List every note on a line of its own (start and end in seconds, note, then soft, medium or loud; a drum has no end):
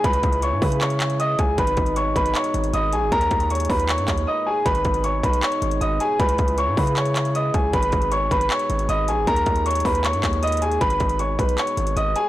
0.00 1.55 G#3 medium
0.04 0.23 C#2 loud
0.04 1.57 C#3 medium
0.04 1.57 E4 medium
0.04 0.41 B4 medium
0.04 0.41 B5 loud
0.04 kick loud
0.04 closed hi-hat medium
0.13 closed hi-hat medium
0.23 0.54 C#2 loud
0.23 kick loud
0.23 closed hi-hat medium
0.33 closed hi-hat medium
0.42 0.61 C#5 medium
0.42 0.61 C#6 medium
0.42 closed hi-hat medium
0.52 0.61 G#2 medium
0.62 1.36 C#3 loud
0.62 0.80 B4 medium
0.62 0.80 B5 medium
0.62 kick medium
0.62 open hi-hat medium
0.72 closed hi-hat medium
0.81 1.18 C#5 medium
0.81 1.17 C#6 medium
0.81 clap loud
0.81 closed hi-hat medium
0.90 closed hi-hat medium
1.00 clap loud
1.00 closed hi-hat medium
1.10 closed hi-hat medium
1.20 1.38 D#5 medium
1.20 1.37 D#6 medium
1.20 closed hi-hat medium
1.39 1.57 C#2 loud
1.39 1.57 G#4 medium
1.39 1.57 G#5 medium
1.39 kick loud
1.39 closed hi-hat medium
1.58 1.77 G#1 loud
1.58 3.10 B2 medium
1.58 4.63 G#3 medium
1.58 3.10 D#4 medium
1.58 1.95 B4 medium
1.58 1.94 B5 loud
1.58 kick loud
1.58 closed hi-hat medium
1.67 closed hi-hat medium
1.77 2.14 G#1 loud
1.77 kick loud
1.77 closed hi-hat medium
1.86 closed hi-hat medium
1.96 2.15 C#5 medium
1.96 2.14 C#6 medium
1.96 closed hi-hat medium
2.16 2.34 G#1 loud
2.16 2.34 B4 medium
2.16 2.34 B5 medium
2.16 kick medium
2.16 closed hi-hat medium
2.26 closed hi-hat medium
2.35 2.72 C#5 medium
2.35 2.71 C#6 medium
2.35 clap loud
2.35 closed hi-hat medium
2.44 closed hi-hat medium
2.54 2.73 G#1 loud
2.54 closed hi-hat medium
2.64 closed hi-hat soft
2.73 2.94 G#1 loud
2.73 2.92 D#5 medium
2.73 2.91 D#6 medium
2.73 closed hi-hat medium
2.93 3.04 A#1 loud
2.93 3.11 G#4 medium
2.93 3.11 G#5 medium
2.93 closed hi-hat medium
3.02 3.11 G#1 loud
3.12 3.30 D#2 loud
3.12 4.64 A#2 medium
3.12 4.64 D#4 medium
3.12 3.49 A#4 medium
3.12 3.48 A#5 loud
3.12 kick loud
3.12 closed hi-hat medium
3.21 closed hi-hat medium
3.31 3.68 D#2 loud
3.31 kick loud
3.31 closed hi-hat medium
3.40 closed hi-hat medium
3.50 3.69 C#5 medium
3.50 3.68 C#6 medium
3.50 closed hi-hat medium
3.55 closed hi-hat medium
3.60 closed hi-hat medium
3.65 closed hi-hat medium
3.69 4.00 D#2 loud
3.69 3.88 B4 medium
3.69 3.87 B5 medium
3.69 kick medium
3.69 open hi-hat medium
3.80 closed hi-hat medium
3.89 4.26 C#5 medium
3.89 4.25 C#6 medium
3.89 clap loud
3.89 closed hi-hat medium
3.98 4.08 G2 loud
3.98 closed hi-hat medium
4.08 4.27 D#2 loud
4.08 kick loud
4.08 clap loud
4.08 closed hi-hat medium
4.18 closed hi-hat medium
4.27 4.46 D#5 medium
4.27 4.45 D#6 medium
4.46 4.65 G#4 medium
4.46 4.64 G#5 medium
4.65 4.84 G#1 loud
4.65 6.18 B2 medium
4.65 12.29 G#3 medium
4.65 6.18 D#4 medium
4.65 5.02 B4 medium
4.65 5.02 B5 loud
4.65 kick loud
4.65 closed hi-hat medium
4.75 closed hi-hat medium
4.85 5.22 G#1 loud
4.85 kick loud
4.85 closed hi-hat medium
4.94 closed hi-hat medium
5.04 5.22 C#5 medium
5.04 5.22 C#6 medium
5.04 closed hi-hat medium
5.23 5.42 B1 loud
5.23 5.42 B4 medium
5.23 5.41 B5 medium
5.23 kick medium
5.23 closed hi-hat medium
5.33 closed hi-hat medium
5.43 5.79 C#5 medium
5.43 5.79 C#6 medium
5.43 clap loud
5.43 closed hi-hat medium
5.52 closed hi-hat medium
5.62 5.80 G#1 loud
5.62 closed hi-hat medium
5.71 closed hi-hat soft
5.81 6.00 G#1 loud
5.81 5.99 D#5 medium
5.81 5.99 D#6 medium
5.81 closed hi-hat medium
6.00 6.19 G#4 medium
6.00 6.18 G#5 medium
6.00 closed hi-hat medium
6.20 6.38 C#2 loud
6.20 7.72 C#3 medium
6.20 7.72 E4 medium
6.20 6.56 B4 medium
6.20 6.56 B5 loud
6.20 kick loud
6.20 closed hi-hat medium
6.29 closed hi-hat medium
6.38 6.69 C#2 loud
6.38 kick loud
6.38 closed hi-hat medium
6.48 closed hi-hat medium
6.58 6.76 C#5 medium
6.58 6.76 C#6 medium
6.58 closed hi-hat medium
6.68 6.77 G#2 loud
6.77 7.51 C#3 loud
6.77 6.96 B4 medium
6.77 6.95 B5 medium
6.77 kick medium
6.77 open hi-hat medium
6.87 closed hi-hat medium
6.96 7.33 C#5 medium
6.96 7.33 C#6 medium
6.96 clap loud
6.96 closed hi-hat medium
7.06 closed hi-hat medium
7.16 clap loud
7.16 closed hi-hat medium
7.25 closed hi-hat medium
7.35 7.53 D#5 medium
7.35 7.53 D#6 medium
7.35 closed hi-hat medium
7.54 7.73 C#2 loud
7.54 7.73 G#4 medium
7.54 7.72 G#5 medium
7.54 kick loud
7.54 closed hi-hat medium
7.73 7.92 G#1 loud
7.73 9.26 B2 medium
7.73 12.29 D#4 medium
7.73 8.10 B4 medium
7.73 8.10 B5 loud
7.73 kick loud
7.73 closed hi-hat medium
7.83 closed hi-hat medium
7.92 8.30 G#1 loud
7.92 kick loud
7.92 closed hi-hat medium
8.02 closed hi-hat medium
8.12 8.30 C#5 medium
8.12 8.30 C#6 medium
8.12 closed hi-hat medium
8.31 8.50 G#1 loud
8.31 8.49 B4 medium
8.31 8.49 B5 medium
8.31 kick medium
8.31 closed hi-hat medium
8.41 closed hi-hat medium
8.50 8.87 C#5 medium
8.50 8.87 C#6 medium
8.50 clap loud
8.50 closed hi-hat medium
8.59 closed hi-hat medium
8.70 8.88 G#1 loud
8.70 closed hi-hat medium
8.79 closed hi-hat medium
8.89 9.10 G#1 loud
8.89 9.07 D#5 medium
8.89 9.07 D#6 medium
8.89 closed hi-hat medium
9.08 9.19 A#1 loud
9.08 9.27 G#4 medium
9.08 9.26 G#5 medium
9.08 closed hi-hat medium
9.18 9.27 G#1 loud
9.27 9.46 D#2 loud
9.27 10.80 A#2 medium
9.27 9.64 A#4 medium
9.27 9.64 A#5 loud
9.27 kick loud
9.27 closed hi-hat medium
9.36 closed hi-hat medium
9.46 9.83 D#2 loud
9.46 kick loud
9.46 closed hi-hat medium
9.56 closed hi-hat medium
9.66 9.84 C#5 medium
9.66 9.84 C#6 medium
9.66 closed hi-hat medium
9.71 closed hi-hat medium
9.75 closed hi-hat medium
9.80 closed hi-hat medium
9.85 10.15 D#2 loud
9.85 10.03 B4 medium
9.85 10.03 B5 medium
9.85 kick medium
9.85 open hi-hat medium
9.95 closed hi-hat medium
10.04 10.41 C#5 medium
10.04 10.41 C#6 medium
10.04 clap loud
10.04 closed hi-hat medium
10.13 10.23 G2 loud
10.13 closed hi-hat medium
10.23 10.79 D#2 loud
10.23 kick loud
10.23 clap loud
10.23 closed hi-hat medium
10.33 closed hi-hat soft
10.43 10.61 D#5 medium
10.43 10.61 D#6 medium
10.43 closed hi-hat medium
10.47 closed hi-hat medium
10.52 closed hi-hat medium
10.57 closed hi-hat medium
10.62 10.80 G#4 medium
10.62 10.80 G#5 medium
10.62 closed hi-hat medium
10.72 closed hi-hat soft
10.81 11.00 G#1 loud
10.81 12.29 B2 medium
10.81 11.18 B4 medium
10.81 11.17 B5 loud
10.81 kick loud
10.81 closed hi-hat medium
10.90 closed hi-hat medium
11.00 11.37 G#1 loud
11.00 kick loud
11.00 closed hi-hat medium
11.09 closed hi-hat medium
11.19 11.38 C#5 medium
11.19 11.37 C#6 medium
11.19 closed hi-hat medium
11.39 11.57 B1 loud
11.39 11.57 B4 medium
11.39 11.57 B5 medium
11.39 kick medium
11.39 closed hi-hat medium
11.49 closed hi-hat medium
11.58 11.95 C#5 medium
11.58 11.94 C#6 medium
11.58 clap loud
11.58 closed hi-hat medium
11.67 closed hi-hat medium
11.77 11.96 G#1 loud
11.77 closed hi-hat medium
11.87 closed hi-hat soft
11.96 12.15 G#1 loud
11.96 12.15 D#5 medium
11.96 12.14 D#6 medium
11.96 closed hi-hat medium
12.16 12.29 G#4 medium
12.16 12.29 G#5 medium
12.16 closed hi-hat medium